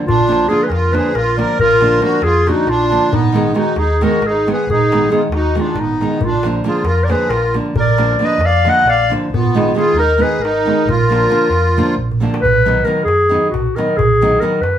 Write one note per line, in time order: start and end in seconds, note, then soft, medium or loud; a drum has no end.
0.06 0.44 A#1 medium
0.06 0.47 D4 medium
0.06 0.50 F4 loud
0.06 darbuka dum medium
0.21 darbuka tek soft
0.27 0.45 D3 medium
0.27 0.45 F3 soft
0.27 0.45 A#3 medium
0.27 0.45 D4 medium
0.32 darbuka tek medium
0.42 darbuka tek soft
0.48 0.65 D3 medium
0.48 0.66 F3 medium
0.48 0.66 A#3 medium
0.48 0.66 D4 medium
0.48 0.65 F4 medium
0.48 0.65 G#4 medium
0.52 darbuka tek soft
0.62 0.71 B4 medium
0.62 darbuka tek soft
0.66 0.97 F2 medium
0.66 0.70 G#4 medium
0.66 0.94 A#4 medium
0.72 0.95 F4 medium
0.72 darbuka tek medium
0.91 1.10 D3 medium
0.91 1.10 F3 soft
0.91 1.11 A#3 medium
0.91 1.11 D4 medium
0.91 1.16 B4 medium
0.91 darbuka tek medium
0.96 1.16 G#4 medium
1.05 darbuka tek soft
1.14 1.42 A#1 medium
1.14 1.40 F4 medium
1.14 1.37 A#4 medium
1.14 darbuka tek medium
1.36 1.55 D3 soft
1.36 1.55 F3 soft
1.36 1.56 A#3 medium
1.36 1.56 D4 medium
1.36 1.59 A#4 medium
1.36 1.57 D5 medium
1.36 darbuka tek medium
1.49 darbuka tek soft
1.59 1.97 A#1 medium
1.59 2.01 F4 loud
1.59 2.00 A#4 loud
1.59 darbuka dum medium
1.71 darbuka tek soft
1.81 1.98 D3 medium
1.81 1.99 F3 medium
1.81 1.99 A#3 medium
1.81 1.99 D4 medium
1.81 darbuka tek medium
1.93 darbuka tek soft
2.01 2.18 D3 medium
2.01 2.19 F3 medium
2.01 2.19 A#3 medium
2.01 2.19 D4 medium
2.01 2.21 F#4 medium
2.01 2.25 A#4 medium
2.01 darbuka tek medium
2.12 darbuka tek soft
2.22 2.49 F2 medium
2.22 2.48 F4 medium
2.22 2.50 G#4 medium
2.22 darbuka tek medium
2.47 2.64 D3 medium
2.47 2.64 F3 soft
2.47 2.64 A#3 medium
2.47 2.65 D4 medium
2.47 2.69 D#4 medium
2.47 2.70 F#4 medium
2.47 darbuka tek medium
2.58 darbuka tek soft
2.67 2.95 A#1 medium
2.67 3.14 D4 medium
2.67 3.12 F4 medium
2.67 darbuka tek medium
2.90 3.09 D3 medium
2.90 3.09 F3 soft
2.90 3.09 A#3 soft
2.90 3.10 D4 medium
2.90 darbuka tek medium
3.02 darbuka tek soft
3.12 3.50 G#1 medium
3.12 3.53 B3 medium
3.12 3.59 D#4 medium
3.12 darbuka dum medium
3.25 darbuka tek soft
3.32 3.51 D#3 medium
3.32 3.52 G#3 medium
3.32 3.52 B3 medium
3.32 3.52 D#4 medium
3.32 darbuka tek medium
3.46 darbuka tek soft
3.54 3.72 D#3 medium
3.54 3.72 G#3 medium
3.54 3.72 B3 medium
3.54 3.72 D#4 medium
3.54 3.76 D#4 medium
3.54 3.80 F#4 medium
3.54 darbuka tek medium
3.67 darbuka tek soft
3.76 4.03 D#2 medium
3.76 4.02 D#4 medium
3.76 4.05 G#4 medium
3.76 darbuka tek medium
4.01 4.18 D#3 medium
4.01 4.19 G#3 medium
4.01 4.19 B3 medium
4.01 4.19 D#4 medium
4.01 4.23 F#4 medium
4.01 4.28 A#4 medium
4.01 darbuka tek medium
4.21 4.49 G#1 medium
4.21 darbuka tek medium
4.26 4.49 D#4 medium
4.26 4.49 G#4 medium
4.46 4.64 D#3 soft
4.46 4.64 G#3 soft
4.46 4.64 B3 medium
4.46 4.65 D#4 medium
4.46 darbuka tek medium
4.52 4.69 G#4 medium
4.52 4.69 B4 medium
4.59 darbuka tek soft
4.67 5.05 G#1 medium
4.67 5.09 G#4 medium
4.67 darbuka dum medium
4.72 5.10 D#4 medium
4.80 darbuka tek soft
4.91 5.07 D#3 medium
4.91 5.08 G#3 medium
4.91 5.08 B3 medium
4.91 5.08 D#4 medium
4.91 darbuka tek medium
5.03 darbuka tek soft
5.10 5.27 D#3 medium
5.10 5.27 G#3 soft
5.10 5.28 B3 medium
5.10 5.28 D#4 medium
5.10 5.21 G#4 medium
5.10 darbuka tek medium
5.15 5.23 F4 medium
5.22 darbuka tek soft
5.29 5.57 D#2 medium
5.29 darbuka tek medium
5.34 5.56 D#4 medium
5.34 5.61 F#4 medium
5.44 darbuka tek soft
5.55 5.73 D#3 medium
5.55 5.73 G#3 medium
5.55 5.73 B3 soft
5.55 5.73 D#4 medium
5.55 darbuka tek medium
5.60 5.79 D4 medium
5.60 5.77 F4 medium
5.65 darbuka tek soft
5.74 6.02 G#1 loud
5.74 6.26 D#4 medium
5.74 darbuka tek medium
5.74 darbuka dum medium
5.80 6.21 B3 medium
5.89 darbuka tek soft
6.01 6.18 D#3 medium
6.01 6.18 G#3 soft
6.01 6.19 B3 soft
6.01 6.19 D#4 medium
6.01 darbuka tek soft
6.11 darbuka tek soft
6.20 6.59 A#1 medium
6.20 darbuka dum medium
6.24 6.47 D4 medium
6.24 6.46 F4 medium
6.33 darbuka tek soft
6.43 6.61 D3 medium
6.43 6.61 F3 medium
6.43 6.62 A#3 medium
6.43 6.62 D4 medium
6.43 darbuka tek medium
6.54 darbuka tek soft
6.64 6.81 D3 medium
6.64 6.82 F3 soft
6.64 6.82 A#3 medium
6.64 6.82 D4 medium
6.64 6.84 F4 medium
6.64 6.88 G#4 medium
6.64 darbuka tek medium
6.74 darbuka tek soft
6.84 7.12 F2 medium
6.84 7.04 F4 medium
6.84 7.05 A#4 medium
6.84 darbuka tek medium
7.03 7.10 A#4 soft
7.03 7.12 D5 medium
7.08 7.26 D3 medium
7.08 7.27 F3 soft
7.08 7.27 A#3 medium
7.08 7.28 D4 medium
7.08 7.31 G#4 medium
7.08 7.31 B4 medium
7.08 darbuka tek medium
7.19 darbuka tek soft
7.28 7.57 A#1 medium
7.28 7.55 F4 medium
7.28 7.55 A#4 medium
7.28 darbuka tek medium
7.54 7.72 D3 medium
7.54 7.72 F3 soft
7.54 7.73 A#3 soft
7.54 7.73 D4 medium
7.54 darbuka tek medium
7.66 darbuka tek soft
7.74 8.13 A#1 medium
7.74 8.17 A#4 medium
7.74 darbuka dum loud
7.80 8.26 D5 medium
7.88 darbuka tek soft
7.98 8.15 D3 medium
7.98 8.16 F3 medium
7.98 8.16 A#3 medium
7.98 8.16 D4 medium
7.98 darbuka tek medium
8.09 darbuka tek soft
8.19 8.36 D3 medium
8.19 8.37 F3 medium
8.19 8.37 A#3 medium
8.19 8.38 D4 medium
8.19 8.41 B4 medium
8.19 darbuka tek medium
8.25 8.47 D#5 medium
8.30 darbuka tek soft
8.38 8.66 F2 medium
8.38 darbuka tek medium
8.44 8.67 D5 medium
8.44 8.71 F5 medium
8.65 8.82 D3 medium
8.65 8.83 F3 medium
8.65 8.83 A#3 medium
8.65 8.83 D4 medium
8.65 8.87 D#5 medium
8.65 darbuka tek medium
8.69 8.91 F#5 medium
8.76 darbuka tek soft
8.84 9.12 A#1 medium
8.84 9.12 D5 medium
8.84 darbuka tek medium
8.90 9.13 F5 medium
9.09 9.28 D3 medium
9.09 9.28 F3 medium
9.09 9.28 A#3 soft
9.09 9.28 D4 medium
9.09 darbuka tek medium
9.24 darbuka tek soft
9.29 9.68 G#1 medium
9.29 9.72 B3 medium
9.34 9.79 F4 medium
9.34 darbuka dum medium
9.47 darbuka tek soft
9.54 9.71 D#3 medium
9.54 9.72 G#3 medium
9.54 9.72 B3 medium
9.54 9.72 D#4 medium
9.54 darbuka tek medium
9.68 darbuka tek soft
9.74 9.91 D#3 medium
9.74 9.92 G#3 soft
9.74 9.92 B3 medium
9.74 9.93 D#4 medium
9.74 9.97 F4 medium
9.74 9.97 G#4 medium
9.79 darbuka tek medium
9.90 10.21 D#2 medium
9.90 darbuka tek soft
9.96 10.19 D#4 medium
9.96 10.23 A#4 loud
9.96 darbuka tek medium
10.18 10.36 D#3 medium
10.18 10.37 G#3 soft
10.18 10.37 B3 medium
10.18 10.37 D#4 medium
10.18 10.42 G#4 medium
10.18 10.43 B4 medium
10.23 darbuka tek medium
10.34 darbuka tek soft
10.39 10.67 G#1 medium
10.39 10.87 A#4 medium
10.44 10.89 D#4 medium
10.44 darbuka tek medium
10.65 10.83 D#3 soft
10.65 10.83 G#3 medium
10.65 10.84 B3 soft
10.65 10.84 D#4 medium
10.65 darbuka tek medium
10.79 darbuka tek soft
10.85 11.24 A#1 medium
10.85 darbuka dum medium
10.89 11.95 F4 loud
10.89 11.94 A#4 loud
11.01 darbuka tek soft
11.09 11.27 D3 medium
11.09 11.27 F3 soft
11.09 11.27 A#3 medium
11.09 11.27 D4 medium
11.09 darbuka tek medium
11.21 darbuka tek soft
11.29 11.47 D3 medium
11.29 11.47 F3 soft
11.29 11.47 A#3 medium
11.29 11.48 D4 medium
11.29 darbuka tek medium
11.42 darbuka tek soft
11.50 11.78 F2 medium
11.50 darbuka tek medium
11.66 darbuka tek soft
11.77 11.94 D3 medium
11.77 11.94 F3 medium
11.77 11.94 A#3 medium
11.77 11.95 D4 medium
11.77 darbuka tek medium
11.97 12.24 A#1 medium
11.97 darbuka dum soft
12.11 darbuka dum medium
12.20 12.38 D3 soft
12.20 12.39 F3 medium
12.20 12.39 A#3 medium
12.20 12.39 D4 medium
12.20 darbuka tek medium
12.34 darbuka tek medium
12.42 12.80 B1 medium
12.42 12.86 B4 loud
12.42 darbuka dum medium
12.65 12.83 D#3 medium
12.65 12.83 F#3 medium
12.65 12.83 B3 medium
12.65 12.83 D#4 medium
12.65 darbuka tek medium
12.85 13.02 D#3 medium
12.85 13.03 F#3 soft
12.85 13.03 B3 soft
12.85 13.03 D#4 medium
12.85 13.03 A#4 medium
12.85 darbuka tek medium
13.04 13.33 F#2 medium
13.04 13.48 G#4 medium
13.08 darbuka tek medium
13.21 darbuka tek soft
13.29 13.48 D#3 medium
13.29 13.48 F#3 soft
13.29 13.49 B3 medium
13.29 13.49 D#4 medium
13.34 darbuka tek soft
13.44 darbuka tek soft
13.50 13.67 B1 medium
13.50 13.77 F#4 medium
13.54 darbuka tek medium
13.54 darbuka dum medium
13.66 darbuka tek soft
13.76 13.94 D#3 soft
13.76 13.95 F#3 soft
13.76 13.95 B3 soft
13.76 13.95 D#4 medium
13.76 13.99 A#4 medium
13.76 darbuka tek medium
13.89 darbuka tek soft
13.97 14.36 B1 medium
13.97 14.42 G#4 loud
13.97 darbuka dum medium
14.21 14.39 D#3 medium
14.21 14.39 F#3 medium
14.21 14.39 B3 medium
14.21 14.39 D#4 medium
14.21 darbuka tek medium
14.40 14.59 D#3 medium
14.40 14.59 F#3 medium
14.40 14.59 B3 medium
14.40 14.59 D#4 medium
14.40 14.63 A#4 medium
14.40 darbuka tek medium
14.61 14.79 F#2 medium
14.61 14.79 B4 medium
14.61 darbuka tek medium